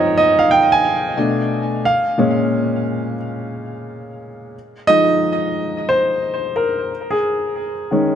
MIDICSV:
0, 0, Header, 1, 2, 480
1, 0, Start_track
1, 0, Key_signature, -4, "minor"
1, 0, Tempo, 674157
1, 1312, Time_signature, 4, 2, 24, 8
1, 5805, End_track
2, 0, Start_track
2, 0, Title_t, "Grand piano"
2, 0, Program_c, 0, 0
2, 0, Control_c, 0, 64, 127
2, 0, Note_on_c, 0, 44, 58
2, 0, Note_on_c, 0, 53, 52
2, 0, Note_on_c, 0, 60, 67
2, 0, Note_on_c, 0, 70, 96
2, 0, Note_on_c, 0, 72, 83
2, 0, Note_on_c, 0, 73, 93
2, 0, Note_on_c, 0, 75, 82
2, 102, Note_off_c, 0, 75, 0
2, 125, Note_on_c, 0, 75, 98
2, 273, Note_off_c, 0, 75, 0
2, 276, Note_on_c, 0, 77, 89
2, 327, Note_off_c, 0, 44, 0
2, 329, Note_off_c, 0, 53, 0
2, 331, Note_off_c, 0, 60, 0
2, 360, Note_off_c, 0, 77, 0
2, 363, Note_on_c, 0, 79, 95
2, 512, Note_off_c, 0, 79, 0
2, 514, Note_on_c, 0, 80, 102
2, 833, Note_on_c, 0, 47, 52
2, 839, Note_on_c, 0, 57, 46
2, 841, Control_c, 0, 64, 0
2, 842, Note_off_c, 0, 73, 0
2, 843, Note_off_c, 0, 72, 0
2, 844, Note_on_c, 0, 62, 55
2, 847, Note_off_c, 0, 70, 0
2, 984, Control_c, 0, 64, 127
2, 1200, Note_off_c, 0, 80, 0
2, 1288, Note_off_c, 0, 47, 0
2, 1291, Note_off_c, 0, 57, 0
2, 1294, Note_off_c, 0, 62, 0
2, 1320, Control_c, 0, 64, 0
2, 1320, Note_on_c, 0, 77, 91
2, 1439, Control_c, 0, 64, 127
2, 1550, Note_on_c, 0, 46, 57
2, 1556, Note_on_c, 0, 56, 56
2, 1561, Note_on_c, 0, 61, 65
2, 2007, Note_off_c, 0, 77, 0
2, 2242, Note_off_c, 0, 46, 0
2, 2245, Note_off_c, 0, 56, 0
2, 2248, Note_off_c, 0, 61, 0
2, 3241, Control_c, 0, 64, 0
2, 3374, Control_c, 0, 64, 127
2, 3470, Note_on_c, 0, 75, 112
2, 3474, Note_on_c, 0, 53, 51
2, 3479, Note_on_c, 0, 56, 47
2, 3483, Note_on_c, 0, 63, 53
2, 4164, Note_off_c, 0, 53, 0
2, 4167, Note_off_c, 0, 56, 0
2, 4169, Note_off_c, 0, 63, 0
2, 4192, Note_on_c, 0, 72, 87
2, 4212, Note_off_c, 0, 75, 0
2, 4670, Note_on_c, 0, 70, 66
2, 4686, Note_off_c, 0, 72, 0
2, 4920, Control_c, 0, 64, 0
2, 5059, Note_on_c, 0, 68, 69
2, 5065, Control_c, 0, 64, 127
2, 5074, Note_off_c, 0, 70, 0
2, 5512, Note_off_c, 0, 68, 0
2, 5633, Note_on_c, 0, 51, 47
2, 5639, Note_on_c, 0, 56, 48
2, 5643, Note_on_c, 0, 61, 56
2, 5805, Note_off_c, 0, 51, 0
2, 5805, Note_off_c, 0, 56, 0
2, 5805, Note_off_c, 0, 61, 0
2, 5805, End_track
0, 0, End_of_file